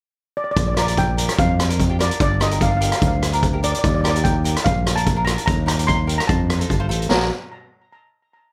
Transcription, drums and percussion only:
0.57 kick, closed hi-hat
0.77 cross-stick, closed hi-hat
0.88 closed hi-hat
0.97 kick, closed hi-hat
1.18 closed hi-hat
1.29 cross-stick, closed hi-hat
1.39 kick, closed hi-hat
1.60 cross-stick, closed hi-hat
1.70 closed hi-hat
1.80 kick, closed hi-hat
2.00 cross-stick, closed hi-hat
2.11 closed hi-hat
2.20 kick, closed hi-hat
2.41 cross-stick, closed hi-hat
2.51 closed hi-hat
2.61 kick, closed hi-hat
2.81 closed hi-hat
2.92 cross-stick, closed hi-hat
3.02 kick, closed hi-hat
3.23 cross-stick, closed hi-hat
3.33 closed hi-hat
3.43 kick, closed hi-hat
3.63 closed hi-hat
3.75 closed hi-hat
3.84 kick, closed hi-hat
4.05 cross-stick, closed hi-hat
4.16 closed hi-hat
4.25 kick, closed hi-hat
4.45 closed hi-hat
4.56 cross-stick, closed hi-hat
4.66 kick, closed hi-hat
4.87 cross-stick, closed hi-hat
4.97 closed hi-hat
5.06 kick, closed hi-hat
5.27 cross-stick, closed hi-hat
5.38 closed hi-hat
5.48 kick, closed hi-hat
5.68 cross-stick, closed hi-hat
5.79 closed hi-hat
5.88 kick, closed hi-hat
6.09 closed hi-hat
6.20 cross-stick, closed hi-hat
6.29 kick, closed hi-hat
6.50 cross-stick, closed hi-hat
6.61 closed hi-hat
6.70 kick, closed hi-hat
6.91 closed hi-hat
7.02 closed hi-hat
7.11 snare, china

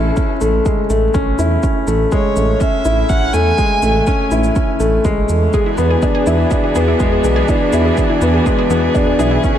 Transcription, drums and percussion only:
0.17 kick, shaker
0.41 shaker
0.66 kick, shaker
0.90 shaker
1.14 kick, shaker
1.39 shaker
1.63 kick, shaker
1.87 shaker
2.12 kick, shaker
2.36 shaker
2.61 kick, shaker
2.85 shaker
3.09 kick, shaker
3.34 shaker
3.58 kick, shaker
3.82 shaker
4.07 kick, shaker
4.31 shaker
4.44 shaker
4.56 kick, shaker
4.80 shaker
5.05 kick, shaker
5.29 shaker
5.53 kick, shaker
5.78 shaker
6.02 kick, shaker
6.27 shaker
6.51 kick, shaker
6.75 shaker
7.00 kick, shaker
7.24 shaker
7.48 kick, shaker
7.73 shaker
7.97 kick, shaker
8.22 shaker
8.46 kick, shaker
8.70 shaker
8.95 kick, shaker
9.19 shaker
9.44 kick, shaker

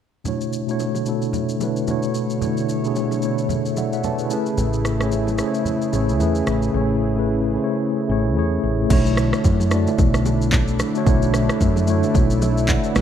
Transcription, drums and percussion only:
0.25 low conga, shaker
0.41 shaker
0.53 shaker
0.68 shaker
0.79 high bongo, shaker
0.95 low bongo, shaker
1.06 shaker
1.22 shaker
1.33 low conga, shaker
1.49 shaker
1.60 low bongo, shaker
1.76 shaker
1.87 high bongo, low conga, shaker
2.03 shaker
2.14 shaker
2.30 shaker
2.41 low conga, shaker
2.57 shaker
2.69 shaker
2.84 shaker
2.96 high bongo, shaker
3.11 low bongo, shaker
3.22 shaker
3.38 shaker
3.49 low conga, shaker
3.65 shaker
3.77 low bongo, shaker
3.93 shaker
4.03 high bongo, low conga, shaker
4.19 shaker
4.30 shaker
4.46 shaker
4.58 low conga, shaker
4.73 shaker
4.85 cross-stick, shaker
5.01 cross-stick, shaker
5.12 high bongo, shaker
5.27 low bongo, shaker
5.38 cross-stick, shaker
5.54 shaker
5.65 low conga, shaker
5.82 shaker
5.93 low bongo, shaker
6.09 shaker
6.20 high bongo, low conga, shaker
6.35 shaker
6.47 cross-stick, shaker
6.62 shaker
8.90 kick, crash, low conga, shaker
9.06 shaker
9.17 cross-stick, shaker
9.33 cross-stick, shaker
9.44 kick, high bongo, shaker
9.60 low bongo, shaker
9.71 cross-stick, high bongo, shaker
9.87 high bongo, shaker
9.98 kick, low conga, shaker
10.14 cross-stick, shaker
10.26 low bongo, shaker
10.42 shaker
10.52 kick, clap, high bongo, low conga, shaker
10.68 shaker
10.79 cross-stick, low bongo, shaker
10.95 shaker
11.06 kick, low conga, shaker
11.22 shaker
11.34 cross-stick, shaker
11.49 cross-stick, shaker
11.61 kick, high bongo, shaker
11.76 low bongo, shaker
11.87 high bongo, shaker
12.03 high bongo, shaker
12.14 kick, low conga, shaker
12.30 shaker
12.42 low bongo, shaker
12.58 shaker
12.68 kick, clap, high bongo, low conga, shaker
12.84 shaker
12.95 cross-stick, snare, low bongo, shaker

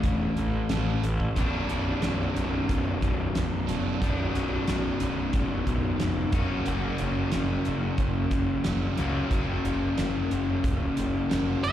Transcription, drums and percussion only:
0.03 kick, closed hi-hat
0.37 closed hi-hat
0.69 snare, closed hi-hat
1.03 closed hi-hat
1.20 kick
1.36 kick, closed hi-hat
1.69 closed hi-hat
2.02 snare, closed hi-hat
2.36 closed hi-hat
2.69 kick, closed hi-hat
3.02 kick, closed hi-hat
3.35 snare, closed hi-hat
3.69 closed hi-hat
4.02 kick, closed hi-hat
4.35 closed hi-hat
4.67 snare, closed hi-hat
5.00 closed hi-hat
5.33 kick, closed hi-hat
5.67 kick, closed hi-hat
6.00 snare, closed hi-hat
6.32 kick, closed hi-hat
6.66 closed hi-hat
6.98 closed hi-hat
7.32 snare, closed hi-hat
7.65 closed hi-hat
7.98 kick, closed hi-hat
8.31 kick, snare, closed hi-hat
8.64 snare, closed hi-hat
8.97 closed hi-hat
9.31 kick, closed hi-hat
9.65 closed hi-hat
9.98 snare, closed hi-hat
10.31 closed hi-hat
10.64 kick, closed hi-hat
10.97 snare, closed hi-hat
11.31 snare, closed hi-hat
11.64 closed hi-hat

